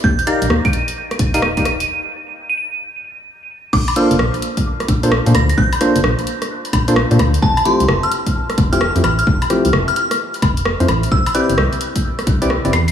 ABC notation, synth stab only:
X:1
M:4/4
L:1/16
Q:"Swing 16ths" 1/4=130
K:Bb
V:1 name="Synth stab"
z2 [EGBdf]2 z6 z [EGBdf] z [EGBdf] z2 | z16 | z2 [B,DFAc]2 z6 z [B,DFAc] z [B,DFAc] z2 | z2 [B,DFAc]2 z6 z [B,DFAc] z [B,DFAc] z2 |
z2 [F,A,C=EG]2 z6 z [F,A,CEG] z [F,A,CEG] z2 | z2 [F,A,C=EG]2 z8 z [F,A,CEc] z2 | z2 [C=EG=Bd]2 z6 z [CEGBd] z [CEGBd] z2 |]